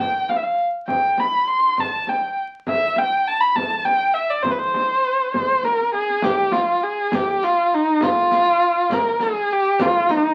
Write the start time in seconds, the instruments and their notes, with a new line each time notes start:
0.00 kamancheh G5
0.16 tombak ka
0.29 kamancheh F5, tombak tek, frame drum
0.36 kamancheh E5
0.43 kamancheh F5
0.88 kamancheh G5, frame drum, tombak dum
1.18 kamancheh B5, tombak tek, frame drum
1.47 kamancheh C6
1.78 kamancheh A5, frame drum, tombak dum
2.07 kamancheh G5, tombak tek, frame drum
2.67 kamancheh E5, tombak dum, frame drum
2.96 kamancheh G5, tombak tek, frame drum
3.28 kamancheh A5
3.41 kamancheh B5
3.56 kamancheh A5, frame drum, tombak dum
3.70 tombak ka
3.85 kamancheh G5, tombak tek, frame drum
4.14 kamancheh E5
4.30 kamancheh D5
4.43 kamancheh C5, tombak dum, frame drum
4.51 kamancheh B4
4.59 kamancheh C5
4.74 tombak tek, frame drum
5.34 kamancheh C5, frame drum, tombak dum
5.50 tombak ka
5.63 kamancheh A#4, tombak tek, frame drum
5.81 tombak ka
5.94 kamancheh G#4, tombak tek
6.09 tombak ka
6.22 kamancheh G4, riq, frame drum, tombak dum
6.52 kamancheh F4, riq, tombak tek, frame drum
6.83 kamancheh G#4
7.12 kamancheh G4, riq, frame drum, tombak dum
7.28 riq
7.43 kamancheh F4, riq, tombak tek
7.72 kamancheh D#4, riq
8.01 kamancheh F4, riq, frame drum, tombak dum
8.31 riq, tombak tek, frame drum
8.90 kamancheh A#4, riq, frame drum, tombak dum
9.06 riq
9.20 kamancheh G#4, riq, tombak tek, frame drum
9.50 kamancheh G4, riq
9.79 kamancheh F4, riq, tombak dum, frame drum
10.09 kamancheh D#4, riq, tombak tek, frame drum